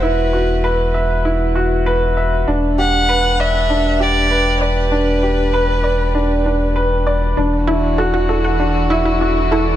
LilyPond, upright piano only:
\new Staff \with { instrumentName = "Upright piano" } { \time 4/4 \key g \major \tempo 4 = 98 e'8 fis'8 b'8 e''8 e'8 fis'8 b'8 e''8 | d'8 g'8 b'8 d''8 d'8 g'8 b'8 d''8 | d'8 g'8 b'8 d''8 d'8 d'8 b'8 d''8 | d'8 e'8 fis'8 a'8 d'8 e'8 fis'8 a'8 | }